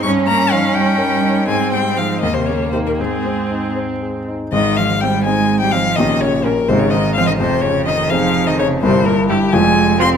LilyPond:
<<
  \new Staff \with { instrumentName = "Violin" } { \time 6/8 \key aes \major \tempo 4. = 84 des'''8 bes''8 f''8 g''4. | aes''8 g''8 f''8 ees''16 c''16 des''8 c''16 bes'16 | aes'4. r4. | ees''8 f''8 g''8 aes''8. g''16 f''8 |
ees''8 des''8 bes'8 c''16 des''16 ees''8 f''16 ees''16 | c''8 des''8 ees''8 f''8. ees''16 des''8 | c''8 bes'8 g'8 aes''4 c'''8 | }
  \new Staff \with { instrumentName = "Grand piano" } { \time 6/8 \key aes \major g,8 des'8 ees'8 des''8 bes'8 ees'8 | aes,8 c'8 <ees' aes'>8 ees,8 bes8 <ees' g'>8 | aes,8 c'8 ees'8 c''8 aes'8 ees'8 | <aes,, aes,>4. <c' ees' aes'>4. |
<bes,, bes, des' g'>4. <aes,, aes, c' ees' aes'>4. | <f,, f,>4. <c' ees' aes'>4. | <g,, g, e' bes'>4. <f,, f, f' aes' c''>4. | }
  \new Staff \with { instrumentName = "Viola" } { \time 6/8 \key aes \major des'2. | c'4. bes4. | c'2~ c'8 r8 | r4 c'8 r4 c'8 |
r4 des'8 r4 c'8 | r4 ees'8 r4 ees'8 | r4 e'8 r4 f'8 | }
  \new Staff \with { instrumentName = "Cello" } { \clef bass \time 6/8 \key aes \major des'8 bes8 f8 g4. | aes8 g8 f8 ees16 c16 des8 c16 bes,16 | aes,4. r4. | ees8 f8 g8 aes8. g16 f8 |
ees8 des8 bes,8 c16 des16 ees8 f16 ees16 | c8 des8 ees8 f8. ees16 des8 | c8 bes,8 g,8 aes4 c'8 | }
>>